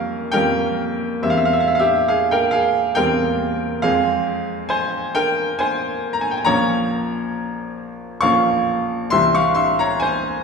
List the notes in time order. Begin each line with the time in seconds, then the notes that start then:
Already playing: F2 G3 A#3 C#4 F4 A#4 C#5 F5
0.32 F2 G3 A#3 C#4 A#4 G5
1.22 E2 G3 A#3 C4 E5
1.30 F5
1.37 E5
1.45 F5
1.53 E5
1.60 F5
1.68 E5
1.75 F5
1.79 G4 E5
2.08 G#4 F5
2.31 A#4 G5
2.51 G#4 F5
2.95 E2 G3 A#3 C4 A#4 G5
3.82 F2 G#3 C4 G#4 F5
4.69 C5 G#5
5.15 A#4 G5
5.59 C5 G#5
6.13 A#5
6.21 G#5
6.31 G5
6.37 G#5
6.45 A#1 F3 A#3 C#4 C#5 A#5
8.21 A#1 F3 A#3 C#4 F5 C#6
9.10 C2 E3 G3 C4 E5 C6
9.35 F5 C#6
9.55 E5 C6
9.79 C#5 A#5
10.00 C5 G#5